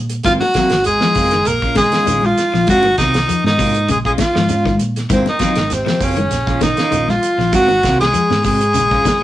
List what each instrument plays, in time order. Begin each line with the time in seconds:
Already playing: fingered electric bass A#2
0.09 closed hi-hat, shekere
0.23 fingered electric bass G#1, clean electric guitar D#3 F#3 A#3 C4 F4, baritone saxophone F3, tenor saxophone F4, alto saxophone F4, kick, snare, closed hi-hat, high conga, low conga, shekere
0.40 baritone saxophone F#3, tenor saxophone F#4, alto saxophone F#4, muted clean electric guitar stroke, high conga, shekere
0.54 clean electric guitar F#3 A#3 C4 F4, muted fingered electric bass stroke, kick, snare, closed hi-hat, shekere
0.70 fingered electric bass G#1, muted clean electric guitar stroke, snare, closed hi-hat, shekere
0.84 baritone saxophone G#3, tenor saxophone G#4, alto saxophone G#4, closed hi-hat, shekere
1.01 clean electric guitar F3, muted clean electric guitar stroke, snare, high conga, shekere
1.15 fingered electric bass F#1, clean electric guitar F#3 A#3 C4 F4, kick, snare, open hi-hat, high conga, shekere
1.31 clean electric guitar D#3, muted clean electric guitar stroke, snare, closed hi-hat, high conga, shekere
1.45 fingered electric bass A#1, baritone saxophone A#3, tenor saxophone A#4, alto saxophone A#4, muted clean electric guitar stroke, closed hi-hat, high conga, shekere
1.62 clean electric guitar G#3 C#4 F4, kick, shekere
1.75 clean electric guitar C#3, baritone saxophone G#3, tenor saxophone G#4, alto saxophone G#4, muted clean electric guitar stroke, kick, snare, closed hi-hat, high conga, shekere
1.92 clean electric guitar C#4 F4, snare, closed hi-hat, shekere
2.06 fingered electric bass A#1, clean electric guitar D#3 G#3 C#4 F4, closed hi-hat, high conga, shekere
2.22 baritone saxophone F3, alto saxophone F4, tenor saxophone F4, muted clean electric guitar stroke, low conga, shekere
2.38 muted clean electric guitar stroke, snare, closed hi-hat, shekere
2.54 fingered electric bass A#1, clean electric guitar F3, snare, shekere
2.67 clean electric guitar F#3 A#3 C4 F4, baritone saxophone F#3, tenor saxophone F#4, alto saxophone F#4, kick, snare, closed hi-hat, high conga, low conga, shekere
2.83 clean electric guitar D#3, muted clean electric guitar stroke, high conga, shekere
2.98 fingered electric bass C2, baritone saxophone D#3, clean electric guitar F#3 A#3 C4 F4, tenor saxophone D#4, alto saxophone D#4, kick, snare, closed hi-hat, shekere
3.14 muted clean electric guitar stroke, snare, closed hi-hat, shekere
3.28 clean electric guitar F3, closed hi-hat, shekere
3.44 fingered electric bass G#2, baritone saxophone D#3, tenor saxophone D#4, alto saxophone D#4, muted clean electric guitar stroke, snare, high conga, shekere
3.58 clean electric guitar C3 F#3 A#3 C4 F4, kick, open hi-hat, high conga, shekere
3.74 muted clean electric guitar stroke, closed hi-hat, high conga, shekere
3.88 fingered electric bass A#1, clean electric guitar C#3, tenor saxophone G#4, alto saxophone G#4, muted clean electric guitar stroke, closed hi-hat, high conga, shekere
3.92 baritone saxophone G#3
4.05 clean electric guitar G#3 C#4 F4, baritone saxophone G#3, tenor saxophone G#4, alto saxophone G#4, kick, shekere
4.18 baritone saxophone F3, tenor saxophone F4, alto saxophone F4, muted clean electric guitar stroke, kick, snare, closed hi-hat, high conga, shekere
4.34 fingered electric bass G#2, clean electric guitar F3 F4, muted clean electric guitar stroke, snare, shekere
4.49 clean electric guitar C#4 F4, closed hi-hat, high conga, shekere
4.65 clean electric guitar D#3, muted clean electric guitar stroke, kick, snare, low conga, shekere
4.78 fingered electric bass A#2, muted clean electric guitar stroke, closed hi-hat, shekere
4.96 snare, closed hi-hat, shekere
5.10 fingered electric bass G#1, baritone saxophone C3, clean electric guitar D#3 F#3 A#3 C4 F4, tenor saxophone C4, alto saxophone C4, kick, closed hi-hat, high conga, low conga, shekere
5.25 tenor saxophone D#4, muted clean electric guitar stroke, snare, high conga, shekere
5.29 baritone saxophone D#3, alto saxophone D#4
5.39 clean electric guitar F#3 A#3 C4 F4, muted fingered electric bass stroke, kick, snare, closed hi-hat, shekere
5.56 fingered electric bass G#1, muted clean electric guitar stroke, snare, closed hi-hat, shekere
5.70 baritone saxophone C3, tenor saxophone C4, alto saxophone C4, snare, closed hi-hat, shekere
5.85 clean electric guitar F3, muted clean electric guitar stroke, snare, high conga, shekere
6.00 fingered electric bass F#1, baritone saxophone C#3, clean electric guitar F#3 A#3 C4 F4, alto saxophone C#4, tenor saxophone C#4, kick, snare, open hi-hat, shekere
6.17 clean electric guitar D#3, muted clean electric guitar stroke, closed hi-hat, high conga, low conga, shekere
6.31 fingered electric bass A#1, muted clean electric guitar stroke, snare, closed hi-hat, high conga, shekere
6.47 fingered electric bass A#1, clean electric guitar F3 G#3 C#4 F4, kick, snare, shekere
6.61 clean electric guitar C#3, baritone saxophone D#3, tenor saxophone D#4, alto saxophone D#4, muted clean electric guitar stroke, kick, snare, closed hi-hat, high conga, shekere
6.77 clean electric guitar G#3 C#4 F4, snare, closed hi-hat, shekere
6.90 fingered electric bass A#1, clean electric guitar D#3 F3 G#3 C#4 F4, closed hi-hat, high conga, shekere
7.08 baritone saxophone F3, tenor saxophone F4, alto saxophone F4, muted clean electric guitar stroke, snare, high conga, low conga, shekere
7.21 muted clean electric guitar stroke, closed hi-hat, shekere
7.38 fingered electric bass A#1, clean electric guitar F3, snare, shekere
7.52 clean electric guitar F#3 A#3 C4 F4, baritone saxophone F#3, alto saxophone F#4, tenor saxophone F#4, kick, closed hi-hat, high conga, low conga, shekere
7.68 clean electric guitar D#3, muted clean electric guitar stroke, high conga, shekere
7.83 fingered electric bass C2, clean electric guitar F#3 A#3 C4 F4, kick, snare, closed hi-hat, shekere
7.99 baritone saxophone G#3, tenor saxophone G#4, alto saxophone G#4, muted clean electric guitar stroke, snare, closed hi-hat, shekere
8.14 clean electric guitar F3, closed hi-hat, shekere
8.30 fingered electric bass G#2, muted clean electric guitar stroke, snare, high conga, shekere
8.44 clean electric guitar C3 F#3 C4, baritone saxophone G#3, alto saxophone G#4, tenor saxophone G#4, muted clean electric guitar stroke, kick, snare, open hi-hat, high conga, shekere
8.61 muted clean electric guitar stroke, closed hi-hat, high conga, shekere
8.74 fingered electric bass A#1, clean electric guitar C#3, muted clean electric guitar stroke, snare, closed hi-hat, high conga, shekere
8.91 clean electric guitar G#3 C#4 F4, kick, snare, shekere
9.05 muted clean electric guitar stroke, kick, snare, closed hi-hat, high conga, shekere